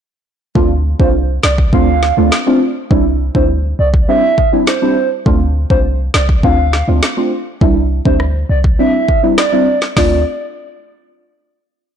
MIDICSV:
0, 0, Header, 1, 5, 480
1, 0, Start_track
1, 0, Key_signature, -1, "minor"
1, 0, Tempo, 588235
1, 452, Time_signature, 4, 2, 24, 8
1, 9763, End_track
2, 0, Start_track
2, 0, Title_t, "Soft synth lead"
2, 0, Program_c, 0, 80
2, 812, Note_on_c, 0, 72, 80
2, 889, Note_off_c, 0, 72, 0
2, 1172, Note_on_c, 0, 74, 82
2, 1250, Note_off_c, 0, 74, 0
2, 1413, Note_on_c, 0, 77, 91
2, 1751, Note_off_c, 0, 77, 0
2, 2732, Note_on_c, 0, 72, 71
2, 2809, Note_off_c, 0, 72, 0
2, 3093, Note_on_c, 0, 74, 80
2, 3170, Note_off_c, 0, 74, 0
2, 3332, Note_on_c, 0, 76, 105
2, 3671, Note_off_c, 0, 76, 0
2, 3812, Note_on_c, 0, 72, 89
2, 4151, Note_off_c, 0, 72, 0
2, 4652, Note_on_c, 0, 72, 85
2, 4729, Note_off_c, 0, 72, 0
2, 5013, Note_on_c, 0, 74, 78
2, 5090, Note_off_c, 0, 74, 0
2, 5253, Note_on_c, 0, 77, 90
2, 5591, Note_off_c, 0, 77, 0
2, 6573, Note_on_c, 0, 72, 75
2, 6650, Note_off_c, 0, 72, 0
2, 6933, Note_on_c, 0, 74, 82
2, 7010, Note_off_c, 0, 74, 0
2, 7173, Note_on_c, 0, 76, 105
2, 7511, Note_off_c, 0, 76, 0
2, 7652, Note_on_c, 0, 74, 90
2, 7991, Note_off_c, 0, 74, 0
2, 8133, Note_on_c, 0, 74, 88
2, 8356, Note_off_c, 0, 74, 0
2, 9763, End_track
3, 0, Start_track
3, 0, Title_t, "Synth stab"
3, 0, Program_c, 1, 62
3, 450, Note_on_c, 1, 57, 97
3, 451, Note_on_c, 1, 60, 90
3, 453, Note_on_c, 1, 62, 88
3, 455, Note_on_c, 1, 65, 109
3, 564, Note_off_c, 1, 57, 0
3, 565, Note_off_c, 1, 60, 0
3, 566, Note_off_c, 1, 62, 0
3, 567, Note_off_c, 1, 65, 0
3, 810, Note_on_c, 1, 57, 75
3, 812, Note_on_c, 1, 60, 70
3, 813, Note_on_c, 1, 62, 72
3, 815, Note_on_c, 1, 65, 82
3, 924, Note_off_c, 1, 57, 0
3, 925, Note_off_c, 1, 60, 0
3, 926, Note_off_c, 1, 62, 0
3, 927, Note_off_c, 1, 65, 0
3, 1410, Note_on_c, 1, 57, 94
3, 1411, Note_on_c, 1, 60, 87
3, 1413, Note_on_c, 1, 62, 88
3, 1414, Note_on_c, 1, 65, 103
3, 1524, Note_off_c, 1, 57, 0
3, 1525, Note_off_c, 1, 60, 0
3, 1526, Note_off_c, 1, 62, 0
3, 1526, Note_off_c, 1, 65, 0
3, 1770, Note_on_c, 1, 57, 78
3, 1772, Note_on_c, 1, 60, 72
3, 1774, Note_on_c, 1, 62, 74
3, 1775, Note_on_c, 1, 65, 86
3, 1885, Note_off_c, 1, 57, 0
3, 1885, Note_off_c, 1, 60, 0
3, 1886, Note_off_c, 1, 62, 0
3, 1887, Note_off_c, 1, 65, 0
3, 2010, Note_on_c, 1, 57, 81
3, 2012, Note_on_c, 1, 60, 72
3, 2013, Note_on_c, 1, 62, 73
3, 2015, Note_on_c, 1, 65, 88
3, 2124, Note_off_c, 1, 57, 0
3, 2125, Note_off_c, 1, 60, 0
3, 2126, Note_off_c, 1, 62, 0
3, 2127, Note_off_c, 1, 65, 0
3, 2370, Note_on_c, 1, 55, 97
3, 2371, Note_on_c, 1, 60, 88
3, 2373, Note_on_c, 1, 62, 91
3, 2375, Note_on_c, 1, 64, 111
3, 2484, Note_off_c, 1, 55, 0
3, 2485, Note_off_c, 1, 60, 0
3, 2486, Note_off_c, 1, 62, 0
3, 2487, Note_off_c, 1, 64, 0
3, 2730, Note_on_c, 1, 55, 74
3, 2731, Note_on_c, 1, 60, 70
3, 2733, Note_on_c, 1, 62, 70
3, 2735, Note_on_c, 1, 64, 83
3, 2844, Note_off_c, 1, 55, 0
3, 2845, Note_off_c, 1, 60, 0
3, 2846, Note_off_c, 1, 62, 0
3, 2847, Note_off_c, 1, 64, 0
3, 3330, Note_on_c, 1, 55, 94
3, 3331, Note_on_c, 1, 60, 83
3, 3333, Note_on_c, 1, 62, 90
3, 3335, Note_on_c, 1, 64, 103
3, 3444, Note_off_c, 1, 55, 0
3, 3445, Note_off_c, 1, 60, 0
3, 3446, Note_off_c, 1, 62, 0
3, 3447, Note_off_c, 1, 64, 0
3, 3690, Note_on_c, 1, 55, 81
3, 3692, Note_on_c, 1, 60, 73
3, 3693, Note_on_c, 1, 62, 74
3, 3695, Note_on_c, 1, 64, 90
3, 3804, Note_off_c, 1, 55, 0
3, 3805, Note_off_c, 1, 60, 0
3, 3806, Note_off_c, 1, 62, 0
3, 3807, Note_off_c, 1, 64, 0
3, 3930, Note_on_c, 1, 55, 81
3, 3932, Note_on_c, 1, 60, 74
3, 3933, Note_on_c, 1, 62, 74
3, 3935, Note_on_c, 1, 64, 87
3, 4044, Note_off_c, 1, 55, 0
3, 4045, Note_off_c, 1, 60, 0
3, 4046, Note_off_c, 1, 62, 0
3, 4047, Note_off_c, 1, 64, 0
3, 4290, Note_on_c, 1, 57, 101
3, 4291, Note_on_c, 1, 60, 88
3, 4293, Note_on_c, 1, 62, 88
3, 4295, Note_on_c, 1, 65, 103
3, 4404, Note_off_c, 1, 57, 0
3, 4405, Note_off_c, 1, 60, 0
3, 4406, Note_off_c, 1, 62, 0
3, 4407, Note_off_c, 1, 65, 0
3, 4651, Note_on_c, 1, 57, 76
3, 4652, Note_on_c, 1, 60, 68
3, 4654, Note_on_c, 1, 62, 71
3, 4656, Note_on_c, 1, 65, 82
3, 4765, Note_off_c, 1, 57, 0
3, 4766, Note_off_c, 1, 60, 0
3, 4766, Note_off_c, 1, 62, 0
3, 4767, Note_off_c, 1, 65, 0
3, 5250, Note_on_c, 1, 57, 97
3, 5252, Note_on_c, 1, 60, 86
3, 5253, Note_on_c, 1, 62, 87
3, 5255, Note_on_c, 1, 65, 107
3, 5364, Note_off_c, 1, 57, 0
3, 5365, Note_off_c, 1, 60, 0
3, 5366, Note_off_c, 1, 62, 0
3, 5367, Note_off_c, 1, 65, 0
3, 5610, Note_on_c, 1, 57, 80
3, 5612, Note_on_c, 1, 60, 70
3, 5614, Note_on_c, 1, 62, 72
3, 5615, Note_on_c, 1, 65, 88
3, 5725, Note_off_c, 1, 57, 0
3, 5725, Note_off_c, 1, 60, 0
3, 5726, Note_off_c, 1, 62, 0
3, 5727, Note_off_c, 1, 65, 0
3, 5850, Note_on_c, 1, 57, 83
3, 5852, Note_on_c, 1, 60, 74
3, 5853, Note_on_c, 1, 62, 72
3, 5855, Note_on_c, 1, 65, 88
3, 5964, Note_off_c, 1, 57, 0
3, 5965, Note_off_c, 1, 60, 0
3, 5966, Note_off_c, 1, 62, 0
3, 5967, Note_off_c, 1, 65, 0
3, 6210, Note_on_c, 1, 55, 100
3, 6212, Note_on_c, 1, 60, 86
3, 6214, Note_on_c, 1, 62, 88
3, 6215, Note_on_c, 1, 64, 105
3, 6324, Note_off_c, 1, 55, 0
3, 6325, Note_off_c, 1, 60, 0
3, 6326, Note_off_c, 1, 62, 0
3, 6327, Note_off_c, 1, 64, 0
3, 6570, Note_on_c, 1, 55, 78
3, 6571, Note_on_c, 1, 60, 68
3, 6573, Note_on_c, 1, 62, 66
3, 6575, Note_on_c, 1, 64, 81
3, 6684, Note_off_c, 1, 55, 0
3, 6685, Note_off_c, 1, 60, 0
3, 6686, Note_off_c, 1, 62, 0
3, 6687, Note_off_c, 1, 64, 0
3, 7170, Note_on_c, 1, 55, 92
3, 7171, Note_on_c, 1, 60, 90
3, 7173, Note_on_c, 1, 62, 89
3, 7175, Note_on_c, 1, 64, 109
3, 7284, Note_off_c, 1, 55, 0
3, 7285, Note_off_c, 1, 60, 0
3, 7286, Note_off_c, 1, 62, 0
3, 7287, Note_off_c, 1, 64, 0
3, 7529, Note_on_c, 1, 55, 78
3, 7531, Note_on_c, 1, 60, 75
3, 7533, Note_on_c, 1, 62, 73
3, 7535, Note_on_c, 1, 64, 83
3, 7644, Note_off_c, 1, 55, 0
3, 7645, Note_off_c, 1, 60, 0
3, 7646, Note_off_c, 1, 62, 0
3, 7647, Note_off_c, 1, 64, 0
3, 7770, Note_on_c, 1, 55, 79
3, 7771, Note_on_c, 1, 60, 73
3, 7773, Note_on_c, 1, 62, 74
3, 7775, Note_on_c, 1, 64, 92
3, 7884, Note_off_c, 1, 55, 0
3, 7885, Note_off_c, 1, 60, 0
3, 7886, Note_off_c, 1, 62, 0
3, 7887, Note_off_c, 1, 64, 0
3, 8128, Note_on_c, 1, 57, 90
3, 8131, Note_on_c, 1, 60, 82
3, 8134, Note_on_c, 1, 62, 85
3, 8136, Note_on_c, 1, 65, 102
3, 8309, Note_off_c, 1, 57, 0
3, 8310, Note_off_c, 1, 60, 0
3, 8312, Note_off_c, 1, 62, 0
3, 8313, Note_off_c, 1, 65, 0
3, 9763, End_track
4, 0, Start_track
4, 0, Title_t, "808-style bass"
4, 0, Program_c, 2, 38
4, 452, Note_on_c, 2, 38, 106
4, 772, Note_off_c, 2, 38, 0
4, 812, Note_on_c, 2, 36, 87
4, 1132, Note_off_c, 2, 36, 0
4, 1172, Note_on_c, 2, 36, 92
4, 1385, Note_off_c, 2, 36, 0
4, 1410, Note_on_c, 2, 38, 97
4, 1731, Note_off_c, 2, 38, 0
4, 1772, Note_on_c, 2, 38, 88
4, 1879, Note_off_c, 2, 38, 0
4, 2372, Note_on_c, 2, 36, 104
4, 2692, Note_off_c, 2, 36, 0
4, 2732, Note_on_c, 2, 38, 82
4, 3052, Note_off_c, 2, 38, 0
4, 3093, Note_on_c, 2, 36, 91
4, 3306, Note_off_c, 2, 36, 0
4, 4293, Note_on_c, 2, 38, 109
4, 4612, Note_off_c, 2, 38, 0
4, 4653, Note_on_c, 2, 36, 84
4, 4972, Note_off_c, 2, 36, 0
4, 5013, Note_on_c, 2, 36, 95
4, 5226, Note_off_c, 2, 36, 0
4, 5250, Note_on_c, 2, 38, 106
4, 5571, Note_off_c, 2, 38, 0
4, 5613, Note_on_c, 2, 38, 87
4, 5719, Note_off_c, 2, 38, 0
4, 6213, Note_on_c, 2, 36, 106
4, 6532, Note_off_c, 2, 36, 0
4, 6573, Note_on_c, 2, 38, 84
4, 6892, Note_off_c, 2, 38, 0
4, 6932, Note_on_c, 2, 36, 93
4, 7145, Note_off_c, 2, 36, 0
4, 8132, Note_on_c, 2, 38, 99
4, 8356, Note_off_c, 2, 38, 0
4, 9763, End_track
5, 0, Start_track
5, 0, Title_t, "Drums"
5, 452, Note_on_c, 9, 36, 111
5, 534, Note_off_c, 9, 36, 0
5, 813, Note_on_c, 9, 36, 87
5, 894, Note_off_c, 9, 36, 0
5, 1170, Note_on_c, 9, 38, 120
5, 1252, Note_off_c, 9, 38, 0
5, 1292, Note_on_c, 9, 36, 91
5, 1374, Note_off_c, 9, 36, 0
5, 1410, Note_on_c, 9, 36, 91
5, 1492, Note_off_c, 9, 36, 0
5, 1654, Note_on_c, 9, 38, 58
5, 1735, Note_off_c, 9, 38, 0
5, 1893, Note_on_c, 9, 38, 111
5, 1975, Note_off_c, 9, 38, 0
5, 2372, Note_on_c, 9, 36, 108
5, 2454, Note_off_c, 9, 36, 0
5, 2732, Note_on_c, 9, 36, 85
5, 2814, Note_off_c, 9, 36, 0
5, 3212, Note_on_c, 9, 36, 94
5, 3294, Note_off_c, 9, 36, 0
5, 3573, Note_on_c, 9, 36, 87
5, 3655, Note_off_c, 9, 36, 0
5, 3813, Note_on_c, 9, 38, 113
5, 3895, Note_off_c, 9, 38, 0
5, 4292, Note_on_c, 9, 36, 110
5, 4374, Note_off_c, 9, 36, 0
5, 4653, Note_on_c, 9, 36, 84
5, 4734, Note_off_c, 9, 36, 0
5, 5011, Note_on_c, 9, 38, 114
5, 5092, Note_off_c, 9, 38, 0
5, 5133, Note_on_c, 9, 36, 90
5, 5214, Note_off_c, 9, 36, 0
5, 5250, Note_on_c, 9, 36, 85
5, 5332, Note_off_c, 9, 36, 0
5, 5494, Note_on_c, 9, 38, 56
5, 5575, Note_off_c, 9, 38, 0
5, 5734, Note_on_c, 9, 38, 110
5, 5815, Note_off_c, 9, 38, 0
5, 6213, Note_on_c, 9, 36, 115
5, 6294, Note_off_c, 9, 36, 0
5, 6573, Note_on_c, 9, 36, 89
5, 6654, Note_off_c, 9, 36, 0
5, 6690, Note_on_c, 9, 37, 65
5, 6772, Note_off_c, 9, 37, 0
5, 7053, Note_on_c, 9, 36, 91
5, 7134, Note_off_c, 9, 36, 0
5, 7413, Note_on_c, 9, 36, 85
5, 7495, Note_off_c, 9, 36, 0
5, 7653, Note_on_c, 9, 37, 90
5, 7653, Note_on_c, 9, 38, 115
5, 7735, Note_off_c, 9, 37, 0
5, 7735, Note_off_c, 9, 38, 0
5, 8012, Note_on_c, 9, 38, 64
5, 8094, Note_off_c, 9, 38, 0
5, 8133, Note_on_c, 9, 36, 105
5, 8133, Note_on_c, 9, 38, 99
5, 8133, Note_on_c, 9, 46, 85
5, 8214, Note_off_c, 9, 36, 0
5, 8214, Note_off_c, 9, 38, 0
5, 8214, Note_off_c, 9, 46, 0
5, 9763, End_track
0, 0, End_of_file